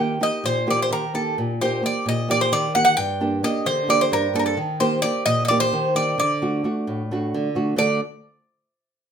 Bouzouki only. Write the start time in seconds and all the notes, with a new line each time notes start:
Already playing: G5
0.23 D#5
0.46 C5
0.70 D5
0.82 C5
0.93 A#4
1.15 A4
1.61 C5
1.86 D5
2.09 D#5
2.31 D5
2.41 C5
2.53 D5
2.75 F#5
2.85 F#5
2.97 G5
3.44 D#5
3.66 C5
3.90 D5
4.01 C5
4.13 A#4
4.36 A4 A#4
4.46 A4
4.80 C5
5.02 D5
5.26 D#5
5.45 D5 D#5
5.60 C5
5.96 D5
6.20 D5
7.78 D5